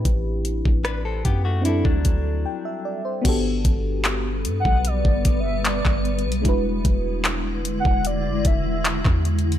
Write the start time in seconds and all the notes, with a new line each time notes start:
Already playing: C4 D4 E4 G4 B4
0.05 A1, kick, closed hi-hat
0.45 closed hi-hat
0.65 A1, kick
0.85 D4 B4, cross-stick, closed hi-hat
1.05 C4 A4
1.25 F#2 B3 G4, kick, closed hi-hat
1.45 A3 F#4
1.62 C4 D4 E4, closed hi-hat
1.66 G3 A4
1.85 D2 F#3 D4, kick
2.05 kick, closed hi-hat
2.45 G5
2.65 E5
2.85 D5
3.05 C5
3.22 G1 G3 B3 D4 F#4 B4, kick, closed hi-hat, crash
3.27 G4 A4
3.65 G1, kick, closed hi-hat
4.05 clap, closed hi-hat
4.45 G2, closed hi-hat
4.60 F#5
4.65 B1, kick
4.85 D5, closed hi-hat
5.05 G1, kick
5.25 kick, closed hi-hat
5.40 E5
5.65 D5, clap, closed hi-hat
5.85 G1, kick, clap
6.05 closed hi-hat
6.19 closed hi-hat
6.25 B1
6.32 closed hi-hat
6.42 E1 D3 G#3 D4 E4, kick, closed hi-hat
6.47 F#4 B4
6.85 E1, kick, closed hi-hat
7.25 clap, closed hi-hat
7.65 closed hi-hat
7.80 F#5
7.85 E1, kick
8.05 D5, closed hi-hat
8.25 F#1
8.45 E1 E5, kick, closed hi-hat
8.85 clap, closed hi-hat
9.05 E2, kick, clap
9.25 closed hi-hat, open hi-hat
9.39 closed hi-hat
9.52 closed hi-hat